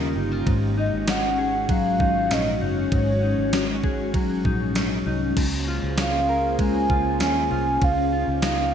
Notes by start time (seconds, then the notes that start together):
Already playing: D#2 C#3 G3 A#3 C#4 D#4 F4 G4 A#4
0.16 G1 D#4
0.32 F4
0.46 G#1 G#2 G#3 C#4 F#4, kick, ride
0.78 D#4 D#5
0.93 G#1
1.07 C#4 F#5, snare, ride, tambourine
1.38 G#4 F#5
1.69 F#3 F5, kick, ride
2.00 G#1 D#4 F5, kick
2.30 A#1 C#4 D#5, snare, ride, tambourine
2.55 D#5
2.61 F#1 D#4 C#5
2.92 G#1 G#2, kick, ride
3.23 D#4
3.38 G#1
3.53 C#4, snare, ride, tambourine
3.84 G#4, kick
4.14 F#3, kick, ride
4.45 A#1 D#4, kick
4.75 C#4, snare, ride, tambourine
5.06 C2 D#4
5.37 C#2 A#3 C#4 F4 G#4 C5, kick, crash, ride
5.68 F4
5.83 C#2
5.97 C#4 F5, snare, ride, tambourine
6.29 A#4
6.59 G#3 G#5, kick, ride
6.90 C#2 F4, kick
7.20 D#2 C#4 G#5, snare, ride, tambourine
7.51 C2 F4
7.82 C#2 D#4 F4 G4 F5, kick, ride
8.13 F4
8.28 C#2
8.42 D#4 F5, snare, ride, tambourine